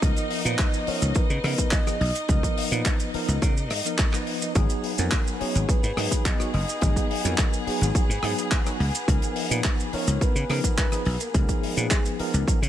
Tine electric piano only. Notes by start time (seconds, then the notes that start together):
0.02 F3 B3 D#4 A#4
0.45 F3 B3 D#4 B4
0.87 F3 B3 D#4 A#4
1.15 F3 B3 D#4 A#4
1.44 F3 B3 D#4 A#4
1.86 F3 B3 D#4 G#4
2.29 F3 B3 D#4 A#4
2.71 F3 B3 D#4 B4
3.14 F3 B3 D#4 A#4
3.42 F3 B3 D#4 A#4
3.85 F3 B3 D#4 A#4
4.13 F3 B3 D#4 B4
4.56 F#3 B3 D#4 G#4
4.98 F#3 B3 D#4 A#4
5.40 F#3 B3 D#4 G#4
5.68 F#3 B3 D#4 G#4
5.96 F#3 B3 D#4 G#4
6.39 F#3 B3 D#4 F#4
6.81 F#3 B3 D#4 G#4
7.24 F#3 B3 D#4 A#4
7.66 F#3 B3 D#4 G#4
7.94 F#3 B3 D#4 G#4
8.22 F#3 B3 D#4 G#4
8.65 F#3 B3 D#4 F#4
9.08 F3 B3 D#4 A#4
9.50 F3 B3 D#4 B4
9.93 F3 B3 D#4 A#4
10.21 F3 B3 D#4 A#4
10.49 F3 B3 D#4 A#4
10.92 F3 B3 D#4 G#4
11.34 F3 B3 D#4 A#4
11.77 F3 B3 D#4 B4
12.19 F3 B3 D#4 A#4
12.47 F3 B3 D#4 A#4